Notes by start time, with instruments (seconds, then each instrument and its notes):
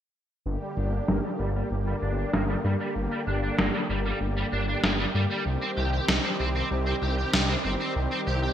0.46 detuned saw bass G1, analog synth pad D3 G3 A#3 G4
0.61 overdriven electric guitar G3
0.77 detuned saw bass G1, overdriven electric guitar D4
0.93 overdriven electric guitar D4
1.08 detuned saw bass G1, overdriven electric guitar A#3, snare
1.24 overdriven electric guitar G3
1.39 detuned saw bass G1, overdriven electric guitar G3
1.55 overdriven electric guitar G3
1.71 detuned saw bass G1
1.87 overdriven electric guitar G3
2.02 detuned saw bass G1, overdriven electric guitar D4
2.18 overdriven electric guitar D4
2.33 detuned saw bass G1, overdriven electric guitar A#3, snare
2.49 overdriven electric guitar G3
2.64 detuned saw bass G2, overdriven electric guitar G3
2.80 overdriven electric guitar G3
2.96 detuned saw bass G1
3.11 overdriven electric guitar G3
3.27 detuned saw bass G1, overdriven electric guitar D4
3.43 overdriven electric guitar D4
3.58 detuned saw bass G1, overdriven electric guitar A#3, snare
3.74 overdriven electric guitar G3
3.89 detuned saw bass G1, overdriven electric guitar G3
4.05 overdriven electric guitar G3
4.21 detuned saw bass G1
4.37 overdriven electric guitar G3
4.52 detuned saw bass G1, overdriven electric guitar D4
4.68 overdriven electric guitar D4
4.83 detuned saw bass G1, overdriven electric guitar A#3, snare
4.99 overdriven electric guitar G3
5.15 detuned saw bass G2, overdriven electric guitar G3
5.30 overdriven electric guitar G3
5.46 detuned saw bass C2, analog synth pad D#3 C4
5.62 overdriven electric guitar C4
5.77 detuned saw bass C2, overdriven electric guitar G4
5.93 overdriven electric guitar G4
6.08 detuned saw bass C2, overdriven electric guitar D#4, snare
6.24 overdriven electric guitar C4
6.39 detuned saw bass C2, overdriven electric guitar C4
6.55 overdriven electric guitar C4
6.71 detuned saw bass C2
6.86 overdriven electric guitar C4
7.02 detuned saw bass C2, overdriven electric guitar G4
7.17 overdriven electric guitar G4
7.33 detuned saw bass C2, overdriven electric guitar D#4, snare
7.49 overdriven electric guitar C4
7.64 detuned saw bass G1, overdriven electric guitar C4
7.80 overdriven electric guitar C4
7.96 detuned saw bass C2
8.11 overdriven electric guitar C4
8.27 detuned saw bass C2, overdriven electric guitar G4
8.43 overdriven electric guitar G4